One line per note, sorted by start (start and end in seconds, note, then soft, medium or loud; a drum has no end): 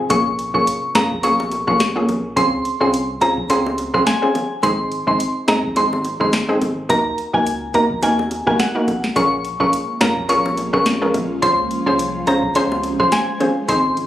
0.10 0.50 A#1 loud
0.10 0.26 A#3 loud
0.10 0.26 C#4 medium
0.10 0.26 F4 medium
0.10 0.26 G#4 loud
0.10 0.23 C#6 loud
0.10 kick loud
0.10 closed hi-hat medium
0.39 closed hi-hat soft
0.54 0.66 A#1 loud
0.54 0.67 A#3 medium
0.54 0.67 C#4 medium
0.54 0.67 F4 medium
0.54 0.67 G#4 medium
0.54 0.65 C#6 medium
0.54 kick medium
0.67 closed hi-hat medium
0.95 1.25 F2 loud
0.95 1.11 A#3 medium
0.95 1.11 C#4 medium
0.95 1.11 F4 medium
0.95 1.11 G#4 medium
0.95 1.08 A#5 medium
0.95 snare loud
0.95 closed hi-hat medium
1.11 kick medium
1.23 1.64 A#1 loud
1.23 1.64 A#3 loud
1.23 1.64 C#4 medium
1.23 1.64 F4 medium
1.23 1.64 G#4 loud
1.23 1.36 C#6 medium
1.23 closed hi-hat medium
1.40 high bongo medium
1.51 closed hi-hat medium
1.51 high bongo medium
1.67 2.05 A#1 loud
1.67 1.80 A#3 medium
1.67 1.80 C#4 medium
1.67 1.80 F4 medium
1.67 1.80 G#4 medium
1.67 1.78 C#6 medium
1.67 kick loud
1.67 cross-stick loud
1.80 snare loud
1.80 closed hi-hat medium
1.80 high bongo medium
1.96 2.08 A#3 medium
1.96 2.08 C#4 medium
1.96 2.09 F4 medium
1.96 2.09 G#4 medium
2.08 2.34 A#1 medium
2.08 closed hi-hat medium
2.08 high bongo medium
2.08 low bongo medium
2.36 2.62 C#2 loud
2.36 2.53 C4 medium
2.36 2.53 C#4 medium
2.36 2.53 F4 medium
2.36 2.53 G#4 loud
2.36 2.50 C6 loud
2.36 kick loud
2.36 closed hi-hat medium
2.65 closed hi-hat soft
2.81 3.18 C2 medium
2.81 2.93 C4 medium
2.81 2.93 C#4 medium
2.81 2.94 F4 medium
2.81 2.94 G#4 medium
2.81 2.91 C6 medium
2.94 closed hi-hat medium
3.21 3.47 C#2 loud
3.21 3.37 C4 medium
3.21 3.38 C#4 medium
3.21 3.38 F4 medium
3.21 3.38 G#4 medium
3.21 3.35 A#5 medium
3.21 closed hi-hat medium
3.38 kick medium
3.50 3.90 C#2 loud
3.50 3.90 C4 loud
3.50 3.90 C#4 medium
3.50 3.90 F4 medium
3.50 3.90 G#4 loud
3.50 3.63 C6 medium
3.50 closed hi-hat medium
3.66 high bongo medium
3.78 closed hi-hat medium
3.78 high bongo medium
3.94 4.06 A#1 medium
3.94 4.07 C4 medium
3.94 4.07 C#4 medium
3.94 4.07 F4 medium
3.94 4.07 G#4 medium
3.94 4.04 C6 medium
3.94 kick medium
3.94 cross-stick loud
4.07 4.48 G#5 medium
4.07 snare loud
4.07 closed hi-hat medium
4.07 high bongo medium
4.22 4.35 C4 medium
4.22 4.35 C#4 medium
4.22 4.35 F4 medium
4.22 4.35 G#4 medium
4.35 closed hi-hat medium
4.35 high bongo medium
4.35 low bongo medium
4.63 5.03 G#1 loud
4.63 4.79 G#3 medium
4.63 4.79 C4 medium
4.63 4.79 D#4 medium
4.63 4.79 G#4 loud
4.63 4.76 C6 loud
4.63 kick loud
4.63 closed hi-hat medium
4.92 closed hi-hat soft
5.07 5.19 G#1 loud
5.07 5.20 G#3 medium
5.07 5.20 C4 medium
5.07 5.20 D#4 medium
5.07 5.20 G#4 medium
5.07 5.18 C6 medium
5.07 kick medium
5.20 closed hi-hat medium
5.48 5.78 D#2 medium
5.48 5.64 G#3 medium
5.48 5.64 C4 medium
5.48 5.64 D#4 medium
5.48 5.64 G#4 medium
5.48 5.61 A#5 medium
5.48 snare loud
5.48 closed hi-hat medium
5.64 kick medium
5.76 6.17 G#1 loud
5.76 6.16 G#3 medium
5.76 6.17 C4 medium
5.76 6.17 D#4 medium
5.76 6.17 G#4 loud
5.76 5.89 C6 medium
5.76 closed hi-hat medium
5.93 high bongo medium
6.05 closed hi-hat medium
6.05 high bongo medium
6.20 6.58 G#1 medium
6.20 6.33 G#3 medium
6.20 6.33 C4 medium
6.20 6.33 D#4 medium
6.20 6.33 G#4 medium
6.20 6.31 C6 medium
6.20 kick medium
6.20 cross-stick loud
6.33 snare loud
6.33 closed hi-hat medium
6.33 high bongo medium
6.49 6.61 G#3 medium
6.49 6.61 C4 medium
6.49 6.61 D#4 medium
6.49 6.62 G#4 medium
6.61 6.87 G#1 loud
6.61 closed hi-hat medium
6.61 high bongo medium
6.61 low bongo medium
6.89 7.15 D#2 loud
6.89 7.05 A#3 medium
6.89 7.05 D#4 medium
6.89 7.06 F#4 medium
6.89 7.06 A#4 loud
6.89 7.03 A#5 loud
6.89 kick loud
6.89 closed hi-hat medium
7.18 closed hi-hat soft
7.33 7.71 C#2 medium
7.33 7.46 A#3 medium
7.33 7.46 D#4 medium
7.33 7.46 F#4 medium
7.33 7.46 A#4 medium
7.33 7.44 G#5 medium
7.33 kick medium
7.47 closed hi-hat medium
7.74 8.00 D#2 loud
7.74 7.90 A#3 medium
7.74 7.90 D#4 medium
7.74 7.90 F#4 medium
7.74 7.91 A#4 medium
7.74 7.88 A#5 medium
7.74 closed hi-hat medium
7.90 kick medium
8.02 8.43 D#2 loud
8.02 8.43 A#3 loud
8.02 8.43 D#4 medium
8.02 8.43 F#4 medium
8.02 8.43 A#4 loud
8.02 8.16 G#5 medium
8.02 closed hi-hat medium
8.19 high bongo medium
8.31 closed hi-hat medium
8.31 high bongo medium
8.47 8.58 C2 loud
8.47 8.59 A#3 medium
8.47 8.59 D#4 medium
8.47 8.60 F#4 medium
8.47 8.60 A#4 medium
8.47 8.57 G#5 medium
8.47 kick medium
8.47 cross-stick loud
8.59 9.01 F#5 medium
8.59 snare loud
8.59 closed hi-hat medium
8.59 high bongo medium
8.75 8.88 A#3 medium
8.75 8.88 D#4 medium
8.75 8.88 F#4 medium
8.75 8.88 A#4 medium
8.88 kick medium
8.88 closed hi-hat medium
8.88 high bongo medium
8.88 low bongo medium
9.04 snare medium
9.16 9.56 A#1 loud
9.16 13.65 F3 medium
9.16 11.40 G#3 medium
9.16 11.40 A#3 medium
9.16 9.32 C#4 medium
9.16 13.65 C#4 medium
9.16 9.32 F4 medium
9.16 13.65 F4 medium
9.16 9.32 G#4 medium
9.16 9.32 A#4 loud
9.16 9.29 C#6 medium
9.16 kick loud
9.16 closed hi-hat medium
9.45 closed hi-hat soft
9.60 9.71 A#1 loud
9.60 9.73 C#4 medium
9.60 9.73 F4 medium
9.60 9.73 G#4 medium
9.60 9.73 A#4 medium
9.60 9.70 C#6 medium
9.60 kick medium
9.73 closed hi-hat medium
10.01 10.31 F2 loud
10.01 10.17 C#4 medium
10.01 10.17 F4 medium
10.01 10.17 G#4 medium
10.01 10.17 A#4 medium
10.01 10.14 A#5 medium
10.01 snare loud
10.01 closed hi-hat medium
10.17 kick medium
10.29 10.69 A#1 loud
10.29 10.69 C#4 loud
10.29 10.69 F4 medium
10.29 10.70 G#4 medium
10.29 10.70 A#4 loud
10.29 10.42 C#6 medium
10.29 closed hi-hat medium
10.46 high bongo medium
10.57 closed hi-hat medium
10.57 high bongo medium
10.73 11.11 A#1 loud
10.73 10.86 C#4 medium
10.73 10.86 F4 medium
10.73 10.86 G#4 medium
10.73 10.86 A#4 medium
10.73 10.84 C#6 medium
10.73 kick medium
10.73 cross-stick loud
10.86 snare loud
10.86 closed hi-hat medium
10.86 high bongo medium
11.01 11.14 C#4 medium
11.01 11.14 F4 medium
11.01 11.14 G#4 medium
11.01 11.15 A#4 medium
11.14 11.40 A#1 medium
11.14 closed hi-hat medium
11.14 high bongo medium
11.14 low bongo medium
11.42 11.68 C#2 loud
11.42 13.66 G#3 medium
11.42 11.58 C#4 medium
11.42 11.58 F4 medium
11.42 11.58 G#4 medium
11.42 13.66 C5 medium
11.42 11.58 C5 loud
11.42 11.55 C6 loud
11.42 kick loud
11.42 closed hi-hat medium
11.71 closed hi-hat soft
11.86 12.23 C2 medium
11.86 11.99 C#4 medium
11.86 11.99 F4 medium
11.86 11.99 G#4 medium
11.86 11.99 C5 medium
11.86 11.97 C6 medium
11.99 closed hi-hat medium
12.27 12.53 C#2 loud
12.27 12.43 C#4 medium
12.27 12.43 F4 medium
12.27 12.43 G#4 medium
12.27 12.44 C5 medium
12.27 12.40 A#5 medium
12.27 closed hi-hat medium
12.43 kick medium
12.55 12.96 C#2 loud
12.55 12.96 C#4 loud
12.55 12.96 F4 medium
12.55 12.96 G#4 medium
12.55 12.96 C5 loud
12.55 12.69 C6 medium
12.55 closed hi-hat medium
12.72 high bongo medium
12.83 closed hi-hat medium
12.83 high bongo medium
13.00 13.11 A#1 medium
13.00 13.12 C#4 medium
13.00 13.12 F4 medium
13.00 13.13 G#4 medium
13.00 13.13 C5 medium
13.00 13.10 C6 medium
13.00 kick loud
13.00 cross-stick loud
13.12 13.54 G#5 medium
13.12 snare loud
13.12 closed hi-hat medium
13.12 high bongo medium
13.40 13.56 C#4 medium
13.40 13.56 F4 medium
13.40 13.57 G#4 medium
13.40 13.57 C5 medium
13.40 closed hi-hat medium
13.40 high bongo medium
13.40 low bongo medium
13.68 14.07 G#1 loud
13.68 14.07 C3 medium
13.68 14.07 D#3 medium
13.68 14.07 G#3 medium
13.68 13.85 C4 medium
13.68 13.85 D#4 medium
13.68 14.07 D#4 medium
13.68 14.07 G#4 medium
13.68 13.85 G#4 medium
13.68 13.85 C5 loud
13.68 13.82 C6 loud
13.68 kick loud
13.68 closed hi-hat medium
13.97 closed hi-hat soft